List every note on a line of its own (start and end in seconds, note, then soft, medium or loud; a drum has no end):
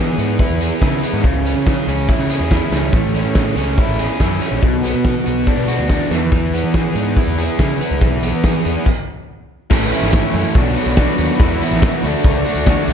0.00 0.15 E3 medium
0.00 2.93 E3 medium
0.00 0.17 B3 medium
0.00 0.60 G#4 medium
0.18 0.38 G#2 medium
0.18 1.02 B3 medium
0.18 closed hi-hat medium
0.39 0.81 E4 medium
0.39 kick loud
0.50 0.69 E2 medium
0.61 1.66 G#4 medium
0.61 closed hi-hat medium
0.82 1.01 C#3 medium
0.82 2.08 E4 medium
0.82 kick loud
0.82 snare medium
1.03 1.24 B3 medium
1.03 closed hi-hat medium
1.13 1.23 G#2 medium
1.13 snare soft
1.24 1.53 C#2 medium
1.24 2.30 C#3 medium
1.24 kick loud
1.45 1.88 C#4 medium
1.45 closed hi-hat medium
1.56 1.75 C#3 medium
1.66 2.29 G#4 medium
1.66 kick loud
1.66 snare loud
1.87 2.07 C#2 medium
1.87 2.72 C#4 medium
1.87 closed hi-hat medium
2.09 2.50 E4 medium
2.09 kick loud
2.19 2.39 C#3 medium
2.30 2.94 G#4 medium
2.30 closed hi-hat medium
2.40 2.60 E2 medium
2.51 2.94 E4 medium
2.51 kick medium
2.51 snare medium
2.72 2.91 C#2 medium
2.72 3.14 C#4 medium
2.72 snare medium
2.72 closed hi-hat medium
2.93 3.22 A1 medium
2.93 3.99 A3 medium
2.93 kick loud
3.14 3.56 C#4 medium
3.14 closed hi-hat medium
3.25 3.54 A2 medium
3.35 3.98 G#4 medium
3.35 kick loud
3.35 snare loud
3.56 3.76 C#2 medium
3.56 4.40 C#4 medium
3.56 closed hi-hat medium
3.78 4.19 E4 medium
3.78 kick loud
3.87 4.07 A1 medium
3.99 4.63 G#4 medium
3.99 closed hi-hat medium
4.20 4.40 F#2 medium
4.20 4.62 E4 medium
4.20 kick medium
4.20 snare medium
4.41 4.63 C#4 medium
4.41 closed hi-hat medium
4.52 4.62 A#1 medium
4.62 4.92 B1 medium
4.62 5.68 B2 medium
4.62 kick loud
4.84 5.25 B3 medium
4.84 closed hi-hat medium
4.94 5.14 B2 medium
5.05 5.67 F#4 medium
5.05 kick loud
5.05 snare loud
5.26 5.46 B1 medium
5.26 6.54 B3 medium
5.26 closed hi-hat medium
5.47 5.88 D4 medium
5.47 kick medium
5.57 5.77 B2 medium
5.68 6.11 F#4 medium
5.68 closed hi-hat medium
5.79 5.98 D2 medium
5.90 6.11 D4 medium
5.90 kick medium
5.90 snare medium
6.11 6.30 E2 medium
6.11 6.32 E3 medium
6.11 snare medium
6.11 closed hi-hat medium
6.32 6.61 E2 medium
6.32 7.38 E3 medium
6.32 kick loud
6.54 6.95 B3 medium
6.54 closed hi-hat medium
6.64 6.93 E3 medium
6.74 7.37 G#4 medium
6.74 kick loud
6.74 snare medium
6.95 7.15 G#2 medium
6.95 7.79 B3 medium
6.95 closed hi-hat medium
7.17 7.58 E4 medium
7.17 kick loud
7.27 7.47 E2 medium
7.38 8.43 G#4 medium
7.38 closed hi-hat medium
7.59 7.79 C#3 medium
7.59 8.65 E4 medium
7.59 kick medium
7.59 snare medium
7.81 8.22 B3 medium
7.81 closed hi-hat medium
7.91 8.01 C#2 medium
8.01 8.31 B1 medium
8.01 8.86 E3 medium
8.01 kick loud
8.23 8.64 B3 medium
8.23 closed hi-hat medium
8.33 8.52 E3 medium
8.44 8.86 G#4 medium
8.44 kick medium
8.44 snare loud
8.65 8.75 E2 medium
8.65 8.86 B3 medium
8.65 closed hi-hat medium
8.86 kick medium
8.86 crash medium
9.70 9.90 A1 loud
9.70 10.12 A2 medium
9.70 10.13 E3 loud
9.70 9.94 A3 loud
9.70 9.93 C#4 loud
9.70 9.91 E4 loud
9.70 11.38 A4 medium
9.70 10.55 G#5 medium
9.70 10.55 C#6 medium
9.70 kick loud
9.70 crash loud
9.70 shaker medium
9.91 10.13 A3 medium
9.91 10.14 C#4 medium
9.91 10.15 E4 medium
9.91 open hi-hat medium
9.91 shaker medium
10.02 10.22 G#1 medium
10.02 snare soft
10.13 10.54 A2 medium
10.13 10.54 E3 medium
10.13 10.36 A3 medium
10.13 10.34 C#4 medium
10.13 10.33 E4 loud
10.13 kick loud
10.13 snare loud
10.13 shaker loud
10.34 10.44 F#2 medium
10.34 10.55 A3 medium
10.34 10.55 C#4 medium
10.34 10.54 E4 medium
10.34 open hi-hat medium
10.34 shaker medium
10.55 10.75 B1 loud
10.55 10.98 B2 loud
10.55 10.96 F#3 loud
10.55 10.79 B3 loud
10.55 10.77 D4 loud
10.55 10.76 F#4 loud
10.55 11.40 D5 medium
10.55 12.02 B5 medium
10.55 kick loud
10.55 shaker loud
10.76 10.98 B3 medium
10.76 10.99 D4 medium
10.76 10.99 F#4 medium
10.76 open hi-hat medium
10.76 shaker medium
10.86 11.06 B1 loud
10.97 11.38 F#3 medium
10.97 11.39 B3 medium
10.97 11.39 D4 medium
10.97 11.40 F#4 medium
10.97 kick loud
10.97 snare loud
10.97 shaker loud
11.18 11.28 D#2 loud
11.18 open hi-hat medium
11.18 shaker medium
11.39 11.59 E2 medium
11.39 11.81 E3 medium
11.39 11.62 B3 loud
11.39 11.61 E4 loud
11.39 12.02 F#4 medium
11.39 11.59 F#4 loud
11.39 12.03 E5 medium
11.39 kick loud
11.39 shaker loud
11.60 11.83 B3 medium
11.60 11.83 E4 medium
11.60 11.84 F#4 medium
11.60 open hi-hat medium
11.60 shaker medium
11.71 11.90 A1 medium
11.71 snare soft
11.82 12.02 E3 medium
11.82 12.03 B3 medium
11.82 12.03 E4 medium
11.82 12.02 F#4 medium
11.82 kick loud
11.82 snare loud
11.82 shaker loud
12.03 12.13 D2 medium
12.03 12.65 D3 medium
12.03 12.47 A3 medium
12.03 12.46 D4 medium
12.03 12.93 F#4 medium
12.03 12.44 F#4 medium
12.03 12.93 D5 medium
12.03 12.93 C#6 medium
12.03 open hi-hat medium
12.24 12.43 C#2 loud
12.24 kick loud
12.24 shaker loud
12.45 12.66 A3 medium
12.45 12.67 D4 medium
12.45 12.68 F#4 medium
12.45 open hi-hat medium
12.45 shaker medium
12.56 12.75 D2 medium
12.66 12.93 D3 medium
12.66 12.93 A3 medium
12.66 12.93 D4 medium
12.66 12.93 F#4 medium
12.66 kick loud
12.66 snare medium
12.66 shaker loud
12.87 12.93 B1 loud
12.87 open hi-hat medium
12.87 shaker medium